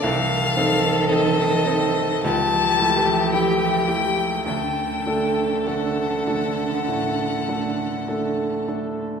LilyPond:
<<
  \new Staff \with { instrumentName = "Violin" } { \time 4/4 \key d \phrygian \tempo 4 = 51 f''4 ees''4 a''4 g''4 | g''4 fis''2~ fis''8 r8 | }
  \new Staff \with { instrumentName = "Violin" } { \time 4/4 \key d \phrygian a'2 g'2 | a'1 | }
  \new Staff \with { instrumentName = "Grand piano" } { \time 4/4 \key d \phrygian c,8 <c' ees' a'>8 <c' ees' a'>8 <c' ees' a'>8 cis,8 <a e' g'>8 <a e' g'>8 <a e' g'>8 | d,8 <a d' a'>8 <a d' a'>8 <a d' a'>8 a,8 <a d' a'>8 <a d' a'>8 <a d' a'>8 | }
  \new Staff \with { instrumentName = "Cello" } { \clef bass \time 4/4 \key d \phrygian ees2 e2 | d1 | }
>>